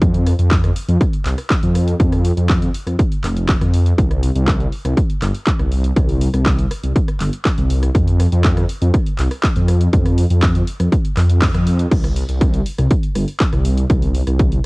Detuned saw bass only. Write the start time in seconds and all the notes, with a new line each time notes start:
0.01 F2
0.39 F2
0.88 F2
1.25 C2
1.63 F2
2.00 F2
2.37 F2
2.87 F2
3.24 F1
3.61 F2
3.98 C2
4.35 C2
4.85 C2
5.22 G1
5.59 C2
5.96 C2
6.34 C2
6.83 C2
7.20 G1
7.58 C2
7.95 F2
8.32 F2
8.82 F2
9.19 C2
9.56 F2
9.93 F2
10.30 F2
10.80 F2
11.17 F2
11.54 F2
11.91 C2
12.29 C2
12.78 C2
13.16 G1
13.53 C2
13.90 C2
14.27 C2